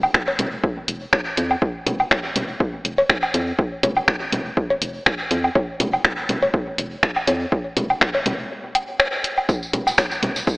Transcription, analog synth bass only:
0.39 0.57 F1 loud
0.88 1.07 F1 medium
1.37 1.56 F2 medium
1.87 2.05 F1 loud
2.36 2.54 F1 loud
2.85 3.03 F1 medium
3.34 3.52 F2 loud
3.83 4.02 F1 loud
4.32 4.51 F1 loud
4.82 5.00 F1 medium
5.31 5.49 F2 loud
5.80 5.98 F1 loud
6.29 6.48 F1 loud
6.78 6.97 F1 medium
7.27 7.46 F2 loud
7.77 7.95 F1 loud
8.26 8.44 F1 loud
9.73 9.92 F1 loud
10.23 10.41 F1 loud

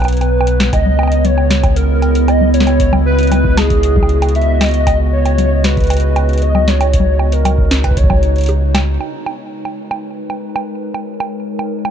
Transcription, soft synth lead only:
0.00 0.18 B4 loud
0.21 0.69 B4 loud
0.73 1.26 D#5 loud
1.25 1.76 C#5 loud
1.76 2.30 A#4 loud
2.28 2.53 D#5 loud
2.54 2.78 C#5 loud
2.80 2.91 C#5 loud
3.06 3.59 B4 loud
3.57 4.34 G#4 loud
4.35 4.62 E5 loud
4.61 4.86 D#5 medium
4.87 4.98 D#5 loud
5.13 5.66 C#5 loud
5.64 6.41 B4 loud
6.42 6.69 D#5 loud
6.68 7.34 C#5 loud
7.32 7.84 A#4 medium
7.84 7.99 B4 medium
7.97 8.75 C#5 medium

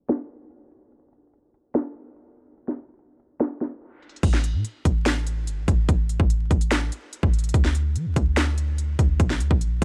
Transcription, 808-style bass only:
4.23 4.56 A1 loud
4.54 4.64 A2 loud
4.85 5.49 A1 loud
5.47 5.59 G1 loud
5.58 5.67 A1 loud
5.68 5.88 A1 loud
5.89 6.18 A1 loud
6.20 6.49 A1 loud
6.51 6.90 A1 loud
7.23 7.53 A1 loud
7.54 7.97 D2 loud
7.96 8.07 F3 loud
8.06 8.16 D2 loud
8.16 8.96 D2 loud
8.99 9.19 D2 loud
9.20 9.42 A#1 loud
9.40 9.50 D2 loud
9.51 9.81 A#1 loud

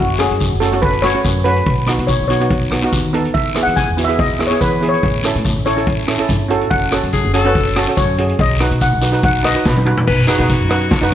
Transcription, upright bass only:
0.00 0.25 F#1 medium
0.31 0.48 F#2 medium
0.52 1.12 F#1 medium
1.25 1.59 F#2 medium
1.66 1.93 B1 medium
1.99 2.16 B2 medium
2.20 2.80 B1 medium
2.93 3.27 D#2 medium
3.35 3.61 E2 medium
3.67 3.84 E3 medium
3.88 4.47 E2 medium
4.61 4.95 E3 medium
5.03 5.29 A1 medium
5.35 5.53 A2 medium
5.56 6.16 A1 medium
6.29 6.64 G1 medium
6.71 6.97 F#1 medium
7.03 7.20 F#2 medium
7.25 7.84 F#1 medium
7.97 8.32 F#2 medium
8.39 8.66 B1 medium
8.71 8.88 B2 medium
8.92 9.52 B1 medium
9.66 10.00 B2 medium
10.08 10.25 B2 medium
10.40 10.57 B2 medium
10.61 10.95 F#2 medium
11.02 11.14 F#2 medium

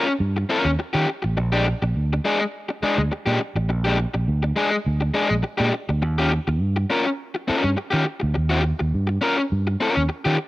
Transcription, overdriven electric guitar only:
0.00 0.12 C#4 medium
0.07 muted overdriven electric guitar stroke medium
0.37 muted overdriven electric guitar stroke soft
0.49 0.70 C#4 medium
0.49 0.66 F4 medium
0.49 0.65 A#4 medium
0.66 muted overdriven electric guitar stroke soft
0.79 muted overdriven electric guitar stroke soft
0.93 1.07 C#4 medium
0.93 1.08 F4 medium
0.93 1.08 G4 loud
1.08 muted overdriven electric guitar stroke soft
1.22 muted overdriven electric guitar stroke medium
1.37 muted overdriven electric guitar stroke soft
1.52 1.66 G#3 medium
1.52 1.66 D4 medium
1.52 1.67 G4 medium
1.67 muted overdriven electric guitar stroke soft
1.82 muted overdriven electric guitar stroke medium
2.13 muted overdriven electric guitar stroke soft
2.25 2.43 G#3 medium
2.25 2.40 D4 medium
2.25 2.40 G#4 medium
2.40 muted overdriven electric guitar stroke soft
2.69 muted overdriven electric guitar stroke medium
2.83 3.01 G#3 medium
2.83 2.98 D4 medium
2.83 2.98 G#4 medium
2.98 muted overdriven electric guitar stroke medium
3.12 muted overdriven electric guitar stroke soft
3.26 3.39 G#3 medium
3.26 3.40 D4 medium
3.26 3.40 G4 loud
3.40 muted overdriven electric guitar stroke medium
3.56 muted overdriven electric guitar stroke soft
3.69 muted overdriven electric guitar stroke soft
3.85 3.97 G#3 medium
3.85 3.97 D4 medium
3.85 3.98 G4 medium
3.98 muted overdriven electric guitar stroke soft
4.14 muted overdriven electric guitar stroke medium
4.43 muted overdriven electric guitar stroke soft
4.56 4.75 G#3 medium
4.56 4.71 D4 medium
4.56 4.71 G#4 loud
4.71 muted overdriven electric guitar stroke medium
5.01 muted overdriven electric guitar stroke soft
5.14 5.33 G#3 medium
5.14 5.29 D4 medium
5.14 5.29 G#4 medium
5.30 muted overdriven electric guitar stroke medium
5.43 muted overdriven electric guitar stroke soft
5.58 5.72 G#3 medium
5.58 5.73 D4 medium
5.58 5.73 G4 medium
5.73 muted overdriven electric guitar stroke soft
5.89 muted overdriven electric guitar stroke soft
6.02 muted overdriven electric guitar stroke soft
6.18 6.31 C#4 medium
6.18 6.31 F4 medium
6.18 6.32 G4 medium
6.32 muted overdriven electric guitar stroke soft
6.48 muted overdriven electric guitar stroke medium
6.76 muted overdriven electric guitar stroke medium
6.90 7.08 C#4 medium
6.90 7.06 F4 medium
6.90 7.06 A#4 medium
7.06 muted overdriven electric guitar stroke medium
7.35 muted overdriven electric guitar stroke medium
7.48 7.69 C#4 medium
7.48 7.63 F4 medium
7.48 7.63 A#4 medium
7.64 muted overdriven electric guitar stroke medium
7.77 muted overdriven electric guitar stroke soft
7.91 8.04 C#4 medium
7.91 8.05 F4 medium
7.91 8.05 G4 medium
8.05 muted overdriven electric guitar stroke soft
8.20 muted overdriven electric guitar stroke soft
8.34 muted overdriven electric guitar stroke soft
8.49 8.61 C#4 medium
8.49 8.62 F4 medium
8.49 8.63 G4 medium
8.62 muted overdriven electric guitar stroke soft
8.79 muted overdriven electric guitar stroke soft
9.07 muted overdriven electric guitar stroke soft
9.21 9.40 C#4 medium
9.21 9.38 F4 loud
9.21 9.37 A#4 loud
9.38 muted overdriven electric guitar stroke medium
9.67 muted overdriven electric guitar stroke medium
9.80 10.02 C#4 medium
9.80 9.95 F4 medium
9.80 9.95 A#4 medium
9.96 muted overdriven electric guitar stroke medium
10.09 muted overdriven electric guitar stroke soft
10.25 10.36 C#4 medium
10.25 10.37 F4 medium
10.25 10.37 G4 loud
10.37 muted overdriven electric guitar stroke soft

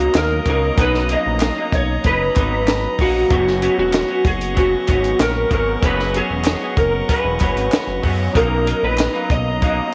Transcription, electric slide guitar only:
0.00 0.18 F#4 medium
0.18 0.49 A#4 medium
0.50 0.81 A#4 loud
0.81 1.12 B4 loud
1.13 1.75 D#5 loud
1.75 2.06 C#5 medium
2.06 3.03 B4 loud
3.01 3.75 F#4 medium
3.79 4.27 F#4 medium
4.27 4.59 G#4 medium
4.59 5.17 F#4 loud
5.22 5.52 A#4 loud
5.53 5.84 A#4 medium
5.85 6.16 B4 medium
6.17 6.78 G#4 loud
6.78 7.10 A#4 medium
7.10 8.00 B4 medium
8.37 8.84 A#4 medium
8.84 9.28 B4 medium
9.32 9.94 D#5 loud

